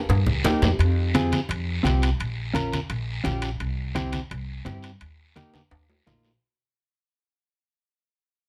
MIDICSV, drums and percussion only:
0, 0, Header, 1, 2, 480
1, 0, Start_track
1, 0, Tempo, 351288
1, 1089, Time_signature, 4, 2, 24, 8
1, 11598, End_track
2, 0, Start_track
2, 0, Title_t, "Drums"
2, 121, Note_on_c, 9, 74, 68
2, 133, Note_on_c, 9, 56, 84
2, 133, Note_on_c, 9, 65, 77
2, 135, Note_on_c, 9, 64, 73
2, 257, Note_off_c, 9, 74, 0
2, 269, Note_off_c, 9, 56, 0
2, 269, Note_off_c, 9, 65, 0
2, 272, Note_off_c, 9, 64, 0
2, 361, Note_on_c, 9, 64, 93
2, 498, Note_off_c, 9, 64, 0
2, 605, Note_on_c, 9, 73, 68
2, 608, Note_on_c, 9, 64, 73
2, 614, Note_on_c, 9, 56, 69
2, 614, Note_on_c, 9, 66, 90
2, 742, Note_off_c, 9, 73, 0
2, 745, Note_off_c, 9, 64, 0
2, 750, Note_off_c, 9, 56, 0
2, 750, Note_off_c, 9, 66, 0
2, 847, Note_on_c, 9, 73, 69
2, 851, Note_on_c, 9, 66, 96
2, 856, Note_on_c, 9, 64, 73
2, 984, Note_off_c, 9, 73, 0
2, 987, Note_off_c, 9, 66, 0
2, 992, Note_off_c, 9, 64, 0
2, 1094, Note_on_c, 9, 74, 67
2, 1099, Note_on_c, 9, 65, 65
2, 1231, Note_off_c, 9, 74, 0
2, 1236, Note_off_c, 9, 65, 0
2, 1559, Note_on_c, 9, 73, 67
2, 1567, Note_on_c, 9, 65, 64
2, 1578, Note_on_c, 9, 63, 76
2, 1696, Note_off_c, 9, 73, 0
2, 1704, Note_off_c, 9, 65, 0
2, 1715, Note_off_c, 9, 63, 0
2, 1805, Note_on_c, 9, 73, 65
2, 1812, Note_on_c, 9, 65, 59
2, 1813, Note_on_c, 9, 63, 63
2, 1942, Note_off_c, 9, 73, 0
2, 1949, Note_off_c, 9, 65, 0
2, 1950, Note_off_c, 9, 63, 0
2, 2044, Note_on_c, 9, 74, 71
2, 2061, Note_on_c, 9, 65, 66
2, 2181, Note_off_c, 9, 74, 0
2, 2197, Note_off_c, 9, 65, 0
2, 2528, Note_on_c, 9, 73, 68
2, 2533, Note_on_c, 9, 63, 76
2, 2549, Note_on_c, 9, 65, 68
2, 2549, Note_on_c, 9, 66, 69
2, 2665, Note_off_c, 9, 73, 0
2, 2670, Note_off_c, 9, 63, 0
2, 2686, Note_off_c, 9, 65, 0
2, 2686, Note_off_c, 9, 66, 0
2, 2762, Note_on_c, 9, 73, 66
2, 2775, Note_on_c, 9, 65, 71
2, 2899, Note_off_c, 9, 73, 0
2, 2911, Note_off_c, 9, 65, 0
2, 3002, Note_on_c, 9, 74, 64
2, 3012, Note_on_c, 9, 65, 67
2, 3139, Note_off_c, 9, 74, 0
2, 3149, Note_off_c, 9, 65, 0
2, 3477, Note_on_c, 9, 73, 66
2, 3480, Note_on_c, 9, 63, 75
2, 3495, Note_on_c, 9, 65, 60
2, 3614, Note_off_c, 9, 73, 0
2, 3616, Note_off_c, 9, 63, 0
2, 3631, Note_off_c, 9, 65, 0
2, 3723, Note_on_c, 9, 73, 62
2, 3736, Note_on_c, 9, 65, 62
2, 3739, Note_on_c, 9, 63, 68
2, 3860, Note_off_c, 9, 73, 0
2, 3872, Note_off_c, 9, 65, 0
2, 3876, Note_off_c, 9, 63, 0
2, 3958, Note_on_c, 9, 65, 65
2, 3960, Note_on_c, 9, 74, 71
2, 4095, Note_off_c, 9, 65, 0
2, 4096, Note_off_c, 9, 74, 0
2, 4437, Note_on_c, 9, 65, 64
2, 4437, Note_on_c, 9, 66, 70
2, 4440, Note_on_c, 9, 73, 66
2, 4450, Note_on_c, 9, 63, 82
2, 4573, Note_off_c, 9, 65, 0
2, 4573, Note_off_c, 9, 66, 0
2, 4576, Note_off_c, 9, 73, 0
2, 4586, Note_off_c, 9, 63, 0
2, 4673, Note_on_c, 9, 65, 69
2, 4683, Note_on_c, 9, 73, 66
2, 4810, Note_off_c, 9, 65, 0
2, 4820, Note_off_c, 9, 73, 0
2, 4920, Note_on_c, 9, 74, 63
2, 4922, Note_on_c, 9, 65, 65
2, 5057, Note_off_c, 9, 74, 0
2, 5059, Note_off_c, 9, 65, 0
2, 5394, Note_on_c, 9, 73, 61
2, 5407, Note_on_c, 9, 65, 64
2, 5412, Note_on_c, 9, 63, 75
2, 5531, Note_off_c, 9, 73, 0
2, 5544, Note_off_c, 9, 65, 0
2, 5549, Note_off_c, 9, 63, 0
2, 5633, Note_on_c, 9, 73, 59
2, 5640, Note_on_c, 9, 65, 65
2, 5645, Note_on_c, 9, 63, 63
2, 5770, Note_off_c, 9, 73, 0
2, 5776, Note_off_c, 9, 65, 0
2, 5782, Note_off_c, 9, 63, 0
2, 5872, Note_on_c, 9, 74, 61
2, 5892, Note_on_c, 9, 65, 67
2, 6008, Note_off_c, 9, 74, 0
2, 6029, Note_off_c, 9, 65, 0
2, 6348, Note_on_c, 9, 73, 63
2, 6368, Note_on_c, 9, 65, 61
2, 6368, Note_on_c, 9, 66, 62
2, 6374, Note_on_c, 9, 63, 81
2, 6485, Note_off_c, 9, 73, 0
2, 6504, Note_off_c, 9, 65, 0
2, 6504, Note_off_c, 9, 66, 0
2, 6510, Note_off_c, 9, 63, 0
2, 6592, Note_on_c, 9, 73, 63
2, 6610, Note_on_c, 9, 65, 70
2, 6728, Note_off_c, 9, 73, 0
2, 6747, Note_off_c, 9, 65, 0
2, 6832, Note_on_c, 9, 74, 65
2, 6844, Note_on_c, 9, 65, 67
2, 6968, Note_off_c, 9, 74, 0
2, 6981, Note_off_c, 9, 65, 0
2, 7323, Note_on_c, 9, 73, 59
2, 7327, Note_on_c, 9, 65, 55
2, 7340, Note_on_c, 9, 63, 78
2, 7459, Note_off_c, 9, 73, 0
2, 7464, Note_off_c, 9, 65, 0
2, 7476, Note_off_c, 9, 63, 0
2, 7564, Note_on_c, 9, 65, 76
2, 7565, Note_on_c, 9, 73, 59
2, 7589, Note_on_c, 9, 63, 59
2, 7701, Note_off_c, 9, 65, 0
2, 7701, Note_off_c, 9, 73, 0
2, 7725, Note_off_c, 9, 63, 0
2, 7801, Note_on_c, 9, 74, 63
2, 7806, Note_on_c, 9, 65, 96
2, 7938, Note_off_c, 9, 74, 0
2, 7943, Note_off_c, 9, 65, 0
2, 8055, Note_on_c, 9, 66, 86
2, 8192, Note_off_c, 9, 66, 0
2, 8282, Note_on_c, 9, 73, 59
2, 8297, Note_on_c, 9, 63, 73
2, 8301, Note_on_c, 9, 66, 68
2, 8419, Note_off_c, 9, 73, 0
2, 8433, Note_off_c, 9, 63, 0
2, 8438, Note_off_c, 9, 66, 0
2, 8518, Note_on_c, 9, 73, 60
2, 8535, Note_on_c, 9, 66, 75
2, 8655, Note_off_c, 9, 73, 0
2, 8671, Note_off_c, 9, 66, 0
2, 11598, End_track
0, 0, End_of_file